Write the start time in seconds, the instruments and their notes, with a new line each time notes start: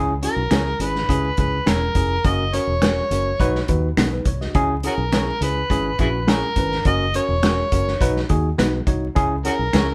Already playing: fingered electric bass C#2, tine electric piano C#4 E4 G#4
0.22 tine electric piano C#4 E4 F#4, harmonica A#4, closed hi-hat
0.36 fingered electric bass B1
0.51 fingered electric bass C#2, clean electric guitar C#4 E4 G#4 C#5, tine electric piano C#4 E4 G#4, finger snap, snare, closed hi-hat
0.79 fingered electric bass G#1, tine electric piano C#4 E4 G#4, harmonica B4, closed hi-hat
0.96 snare
1.09 fingered electric bass C#2, tine electric piano C#4 E4 G#4, kick, closed hi-hat
1.37 fingered electric bass C#2, tine electric piano C#4 E4 G#4, harmonica B4, kick, closed hi-hat
1.66 fingered electric bass E1, clean electric guitar C#4 E4 G#4 C#5, tine electric piano C#4 E4 A#4, harmonica A#4, finger snap, snare, closed hi-hat
1.95 fingered electric bass F1, tine electric piano C#4 E4 G#4, kick, closed hi-hat
2.24 fingered electric bass F#1, tine electric piano C#4 F#4 A#4, harmonica D#5, kick, closed hi-hat
2.53 tine electric piano C#4 F#4 A#4, harmonica C#5, closed hi-hat
2.67 fingered electric bass E1
2.82 clean electric guitar C#4 F#4 A#4 C#5, tine electric piano C#4 F#4 A#4, finger snap, snare, closed hi-hat
3.10 fingered electric bass F#1, tine electric piano C#4 F#4 A#4, closed hi-hat
3.40 fingered electric bass B1, tine electric piano D#4 F#4 B4, kick, closed hi-hat
3.55 snare
3.68 fingered electric bass D#2, tine electric piano D#4 F#4 B4, kick, closed hi-hat
3.97 fingered electric bass B1, clean electric guitar B3 D#4 F#4 B4, tine electric piano C#4 A#4, finger snap, snare, closed hi-hat
4.13 tine electric piano D#4 B4
4.25 fingered electric bass C2, tine electric piano C#5, kick, closed hi-hat
4.41 tine electric piano F#4 D#5, snare
4.55 fingered electric bass C#2, tine electric piano C#4 E4 G#4, kick, closed hi-hat
4.83 tine electric piano C#4 E4 G#4, harmonica C#4 F#4 A#4, closed hi-hat
4.98 fingered electric bass B1
5.12 clean electric guitar C#4 E4 G#4 C#5, tine electric piano C#4 E4 G#4, finger snap, snare, closed hi-hat
5.41 fingered electric bass C#2, tine electric piano C#4 E4 G#4, harmonica B4, closed hi-hat
5.70 fingered electric bass G#1, tine electric piano C#4 E4 G#4, kick, closed hi-hat
5.99 fingered electric bass A#1, tine electric piano C#4 E4 F#4, harmonica E4 G#4 B4, kick, closed hi-hat
6.21 harmonica B4
6.27 clean electric guitar C#4 E4 G#4 C#5, tine electric piano C#4 E4 G#4, harmonica A#4, finger snap, snare, closed hi-hat
6.56 fingered electric bass G#1, tine electric piano C#4 E4 B4, kick, closed hi-hat
6.72 snare
6.85 fingered electric bass F#1, tine electric piano C#4 F#4 A#4, harmonica D#5, kick, closed hi-hat
7.14 tine electric piano C#4 F#4 A#4, harmonica C#5, closed hi-hat
7.28 fingered electric bass E1
7.43 clean electric guitar C#4 F#4 A#4 C#5, tine electric piano C#4 F#4 A#4, finger snap, snare, closed hi-hat
7.72 fingered electric bass F#1, tine electric piano C#4 F#4 A#4, kick, closed hi-hat
7.88 snare
8.01 fingered electric bass B1, tine electric piano D#4 F#4 B4, kick, closed hi-hat
8.16 snare
8.29 fingered electric bass D#2, tine electric piano D#4 F#4 G#4, kick, closed hi-hat
8.58 fingered electric bass B1, clean electric guitar B3 D#4 F#4 B4, tine electric piano D#4 F#4 B4, finger snap, snare, closed hi-hat
8.87 fingered electric bass C2, tine electric piano D#4 F#4 C#5, kick, closed hi-hat
9.15 fingered electric bass C#2, tine electric piano C#4 E4 G#4, kick, closed hi-hat
9.45 tine electric piano C#4 E4 G#4, harmonica C#4 F#4 A#4, closed hi-hat
9.59 fingered electric bass B1
9.73 fingered electric bass C#2, clean electric guitar C#4 E4 G#4 C#5, tine electric piano C#4 E4 G#4, finger snap, snare, closed hi-hat